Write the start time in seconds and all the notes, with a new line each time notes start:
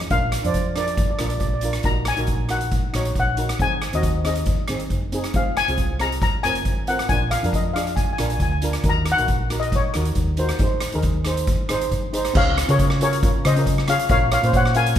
Already playing: D#5
0.10 A#1 D4 F4 A#4 F5, kick, closed hi-hat
0.32 cross-stick, closed hi-hat
0.43 F2 D4 F4 C5 D5, closed hi-hat
0.54 kick, closed hi-hat
0.75 D4 F4 A#4 D5, cross-stick, closed hi-hat
0.86 D5, closed hi-hat
0.95 D5, kick, closed hi-hat
1.02 D5
1.11 D5
1.19 A#1 D4 F4 A#4 D5, cross-stick, closed hi-hat
1.25 D5
1.30 D5, closed hi-hat
1.40 A#1 D5, kick, closed hi-hat
1.47 D5
1.54 D5
1.61 D4 F4 A#4, closed hi-hat
1.73 cross-stick, closed hi-hat
1.83 A#1 D#4 F#4 A#4 A#5, kick, closed hi-hat
2.05 G#5, cross-stick, closed hi-hat
2.17 A#1 D#4 F#4 A#4, closed hi-hat
2.27 kick, closed hi-hat
2.49 D#4 F#4 A#4 F#5, cross-stick, closed hi-hat
2.61 closed hi-hat
2.71 kick, closed hi-hat
2.93 A#1 D#4 F#4 C#5, cross-stick, closed hi-hat
3.05 closed hi-hat
3.15 A#1, kick, closed hi-hat
3.20 F#5
3.37 D#4 F#4 A#4, closed hi-hat
3.49 cross-stick, closed hi-hat
3.59 G#1 C4 D#4 G#4 G#5, kick, closed hi-hat
3.82 cross-stick, closed hi-hat
3.93 D#2 C4 D#4 F#4 D#5, closed hi-hat
4.03 kick, closed hi-hat
4.24 C4 D#4 G#4 D#5, cross-stick, closed hi-hat
4.35 closed hi-hat
4.46 kick, closed hi-hat
4.68 G#1 C4 D#4 G#4, cross-stick, closed hi-hat
4.80 closed hi-hat
4.90 F#1, kick, closed hi-hat
5.12 C4 D#4 G#4, closed hi-hat
5.24 cross-stick, closed hi-hat
5.34 F1 C4 F4 G#4 F5, kick, closed hi-hat
5.57 G#5, cross-stick, closed hi-hat
5.68 C2 C4 F4 G#4, closed hi-hat
5.78 kick, closed hi-hat
6.00 C4 F4 G#4 A#5, cross-stick, closed hi-hat
6.12 closed hi-hat
6.22 A#5, kick, closed hi-hat
6.43 F1 C4 F4 A#4 G#5, cross-stick, closed hi-hat
6.55 closed hi-hat
6.65 G#1, kick, closed hi-hat
6.87 C4 F4 A#4 F#5, closed hi-hat
6.99 cross-stick, closed hi-hat
7.09 A#1 D4 F4 A#4 G#5, kick, closed hi-hat
7.31 F5, cross-stick, closed hi-hat
7.43 F2 D4 F4 A#4, closed hi-hat
7.53 D#5, kick, closed hi-hat
7.73 D4 F4 G#4 F5, cross-stick, closed hi-hat
7.87 closed hi-hat
7.96 G#5, kick, closed hi-hat
8.05 G#5
8.13 G#5
8.18 A#1 D4 F4 A#4 G#5, cross-stick, closed hi-hat
8.28 G#5, closed hi-hat
8.34 G#5
8.40 D2 G#5, kick, closed hi-hat
8.52 G#5
8.62 D4 F4 A#4, closed hi-hat
8.73 cross-stick, closed hi-hat
8.83 D#2 D#4 F#4 A#4, kick, closed hi-hat
8.89 A#5
9.06 cross-stick, closed hi-hat
9.12 F#5
9.17 A#1 D#4 F#4 A#4, closed hi-hat
9.28 kick, closed hi-hat
9.50 D#4 F#4 A#4, cross-stick, closed hi-hat
9.60 D#5, closed hi-hat
9.72 C#5, kick, closed hi-hat
9.94 D#2 D#4 F#4 A#4, cross-stick, closed hi-hat
10.05 closed hi-hat
10.15 D#2, kick, closed hi-hat
10.37 D#4 F#4 A#4 C5, closed hi-hat
10.49 cross-stick, closed hi-hat
10.59 G#1 D#4 G#4 C5, kick, closed hi-hat
10.80 cross-stick, closed hi-hat
10.92 D#2 D#4 G#4 A#4, closed hi-hat
11.02 kick, closed hi-hat
11.25 D#4 G#4 C5, cross-stick, closed hi-hat
11.37 closed hi-hat
11.47 kick, closed hi-hat
11.69 G#1 D#4 G#4 C5, cross-stick, closed hi-hat
11.81 closed hi-hat
11.91 G#1, kick, closed hi-hat
12.13 D#4 G#4 C5, closed hi-hat
12.25 cross-stick, closed hi-hat
12.34 C#2 C#4 F4 G#4 C#5 F5, kick, crash
12.58 cross-stick, closed hi-hat
12.68 C#3 C#4 F4 G#4 A#4 C#5, closed hi-hat
12.79 kick, closed hi-hat
12.90 cross-stick
13.00 C#4 F4 G#4 A#4 C#5, closed hi-hat
13.13 closed hi-hat
13.23 C#4 F4 A#4, kick, closed hi-hat
13.45 C#3 C5 D#5, cross-stick, closed hi-hat
13.56 C#4 F4 A#4, closed hi-hat
13.66 kick, closed hi-hat
13.78 cross-stick
13.88 C#4 F4 G#4 C#5 F5, cross-stick, closed hi-hat
13.99 closed hi-hat
14.09 A#1 C#4 F4 A#4 C#5 F5, kick, closed hi-hat
14.32 C#5 F5, cross-stick, closed hi-hat
14.43 A#2 C#4 F4 C5, closed hi-hat
14.53 C#5 F#5, kick, closed hi-hat
14.65 cross-stick
14.75 C#4 F4 A#4 F5 G#5, closed hi-hat
14.86 closed hi-hat
14.95 closed hi-hat